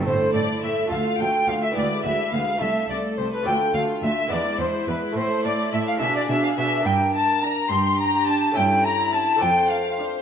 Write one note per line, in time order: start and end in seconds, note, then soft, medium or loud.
0.01 0.86 A3 soft
0.01 0.87 E4 soft
0.01 0.88 A4 soft
0.05 0.31 A2 soft
0.05 0.14 A2 soft
0.05 0.33 A3 soft
0.05 0.87 E4 soft
0.05 0.32 C5 medium
0.05 0.32 C5 soft
0.34 0.60 A2 soft
0.34 0.42 A2 soft
0.34 0.62 A3 soft
0.34 0.40 D5 medium
0.34 0.62 D5 soft
0.63 0.88 A2 soft
0.63 0.71 A2 soft
0.63 0.90 A3 soft
0.63 0.69 E5 medium
0.63 0.91 E5 soft
0.87 1.71 A3 soft
0.87 1.18 A3 soft
0.87 1.72 F4 soft
0.87 1.73 A4 soft
0.91 0.99 D2 soft
0.91 1.17 D2 soft
0.91 1.75 F4 soft
0.91 0.97 F5 medium
0.91 1.19 F5 soft
1.19 1.28 D2 soft
1.19 1.45 D2 soft
1.19 1.47 A3 soft
1.19 1.48 G5 soft
1.19 1.50 G5 medium
1.48 1.73 D2 soft
1.48 1.56 D2 soft
1.48 1.76 A3 soft
1.48 1.54 F5 soft
1.48 1.65 F5 medium
1.62 1.76 E5 soft
1.62 1.76 E5 medium
1.71 2.56 B3 soft
1.71 2.57 E4 soft
1.71 2.58 G#4 soft
1.76 2.01 D2 soft
1.76 1.84 D2 soft
1.76 2.03 G#3 soft
1.76 2.60 B4 medium
1.76 2.04 D5 soft
1.76 2.06 D5 soft
2.04 2.12 D2 soft
2.04 2.30 D2 soft
2.04 2.31 G#3 soft
2.04 2.32 E5 soft
2.04 2.34 E5 medium
2.32 2.41 D2 soft
2.32 2.59 D2 soft
2.32 2.60 G#3 soft
2.32 2.61 F5 soft
2.32 2.60 F5 medium
2.57 3.41 A3 soft
2.57 3.42 E4 soft
2.57 3.43 A4 soft
2.57 2.88 E5 medium
2.61 2.69 C2 soft
2.61 2.89 A3 soft
2.61 3.45 A4 medium
2.61 2.89 E5 soft
2.89 2.98 C2 soft
2.89 3.17 A3 soft
2.89 3.19 D5 medium
2.89 2.97 D5 soft
3.17 3.26 C2 soft
3.17 3.45 A3 soft
3.17 3.32 C5 soft
3.32 3.46 B4 soft
3.32 3.45 B4 soft
3.42 4.27 A3 soft
3.42 4.28 D4 soft
3.42 4.30 F4 soft
3.42 4.29 A4 soft
3.42 3.52 G5 medium
3.47 3.55 D2 soft
3.47 3.72 D2 soft
3.47 3.74 A3 soft
3.47 3.75 G5 medium
3.75 3.83 D2 soft
3.75 4.01 D2 soft
3.75 4.02 A3 soft
3.75 3.83 F5 soft
3.75 4.04 F5 soft
4.02 4.29 D2 soft
4.02 4.11 D2 soft
4.02 4.31 A3 soft
4.02 4.33 E5 medium
4.02 4.31 E5 soft
4.27 5.12 G#3 soft
4.27 5.12 B3 soft
4.27 5.12 E4 soft
4.31 4.39 E2 soft
4.31 4.57 E2 soft
4.31 4.59 G#3 soft
4.31 5.98 E4 medium
4.31 4.59 D5 medium
4.31 4.60 D5 soft
4.59 4.85 E2 soft
4.59 4.68 E2 soft
4.59 4.87 G#3 soft
4.59 4.89 C5 medium
4.59 4.89 C5 soft
4.88 4.96 E2 soft
4.88 5.14 E2 soft
4.88 5.16 G#3 soft
4.88 5.18 B4 medium
4.88 4.97 B4 soft
5.12 5.96 A3 soft
5.12 5.97 E4 soft
5.16 5.42 A2 soft
5.16 5.24 A2 medium
5.16 5.44 A3 soft
5.16 5.43 C5 medium
5.16 5.44 C5 medium
5.44 5.70 A2 soft
5.44 5.53 A2 soft
5.44 5.72 A3 soft
5.44 5.72 D5 medium
5.44 5.73 D5 soft
5.72 5.98 A2 soft
5.72 5.81 A2 soft
5.72 6.01 A3 soft
5.72 5.79 E5 medium
5.72 5.88 E5 soft
5.87 6.00 F5 medium
5.87 5.93 F5 medium
5.97 6.80 G#3 soft
5.97 6.81 D4 soft
5.97 6.82 E4 soft
5.97 6.15 E5 medium
6.01 6.09 B2 soft
6.01 6.27 B2 soft
6.01 6.29 D4 soft
6.01 6.86 G#4 medium
6.16 6.29 D5 soft
6.16 6.22 D5 medium
6.29 6.55 B2 soft
6.29 6.38 B2 soft
6.29 6.57 D4 soft
6.29 6.46 E5 medium
6.29 6.43 E5 medium
6.44 6.49 F5 soft
6.44 6.57 F5 medium
6.57 6.83 B2 soft
6.57 6.66 B2 soft
6.57 6.85 D4 soft
6.57 6.87 E5 medium
6.57 6.86 E5 medium
6.81 8.49 A#3 soft
6.81 8.50 D4 soft
6.81 8.51 E4 soft
6.85 7.54 G2 soft
6.85 7.54 G2 medium
6.85 7.69 A#4 medium
6.85 7.13 G5 medium
6.85 6.94 G5 medium
7.14 7.43 A5 medium
7.14 7.42 A5 medium
7.42 7.64 D4 medium
7.42 7.70 A#5 medium
7.42 7.71 A#5 medium
7.70 8.39 G2 medium
7.70 8.39 G2 soft
7.70 8.54 G4 medium
7.70 8.00 C6 medium
7.70 7.99 C6 medium
7.99 8.27 A#5 medium
8.27 8.49 D4 soft
8.27 8.56 A5 medium
8.27 8.57 A5 medium
8.51 9.35 A3 soft
8.51 9.36 C#4 soft
8.51 9.37 E4 soft
8.56 9.24 G2 soft
8.56 9.25 G2 medium
8.56 9.41 E4 medium
8.56 8.86 G5 medium
8.56 8.64 G5 medium
8.84 9.12 A#5 medium
8.84 9.15 A#5 medium
9.12 9.34 C#4 medium
9.12 9.41 A5 medium
9.12 9.43 A5 medium
9.36 10.21 A3 soft
9.36 10.22 D4 soft
9.36 10.22 A4 soft
9.41 10.09 F2 soft
9.41 10.10 F2 medium
9.41 10.22 C5 medium
9.41 9.70 G5 medium
9.41 9.69 G5 medium
9.70 9.98 F5 medium
9.70 9.76 F5 medium
9.98 10.19 D4 medium